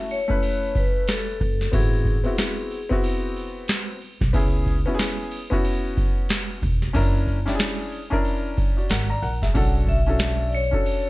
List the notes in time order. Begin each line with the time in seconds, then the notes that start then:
Already playing: A3 C#4 E4 F#4 E5
0.09 C#5, ride
0.28 A3 C#4 E4 B4, kick
0.43 ride
0.75 B4, kick, ride
1.08 A4, snare, hi-hat pedal, ride
1.40 F#1, kick, ride
1.61 snare
1.72 G#1 B3 C4 E4 F#4 G#4, kick, ride
2.05 kick, ride
2.24 B3 C4 E4 F#4, ride
2.38 snare, hi-hat pedal, ride
2.71 ride
2.89 B3 C4 E4 F#4, kick
3.04 ride
3.36 ride
3.68 snare, hi-hat pedal, ride
4.02 ride
4.21 B1, kick, snare
4.33 C#2 B3 C#4 E4 G#4, kick, ride
4.66 kick, ride
4.85 B3 C#4 E4 F#4, ride
4.95 G#4
4.99 snare, hi-hat pedal, ride
5.31 ride
5.50 B3 C#4 E4 F#4, kick
5.65 ride
5.97 kick, ride
6.29 snare, hi-hat pedal, ride
6.62 E1, kick, ride
6.82 snare
6.93 F#1 C#4 D4 E4 A#4, kick, ride
7.27 kick, ride
7.46 C#4 D4 E4 G4, snare, ride
7.55 G#4
7.59 snare, hi-hat pedal, ride
7.92 ride
8.10 C#4 D4 E4 A#4, kick, ride
8.25 ride
8.57 kick, ride
8.77 F#4 D5, ride
8.90 G#1 A#4 F#5, snare, hi-hat pedal, ride
9.10 D5 A#5
9.22 A#1 A#4 F#5, ride
9.42 G#4 E5, kick, snare, ride
9.54 B1 C#4 D4 F#4 A4 F#5, kick, ride
9.87 E5, kick, ride
10.06 C#4 D4 F#4 A4, ride
10.19 snare, hi-hat pedal, ride
10.48 D5, ride
10.55 C#5
10.71 C#4 D4 F#4 A4, kick
10.86 ride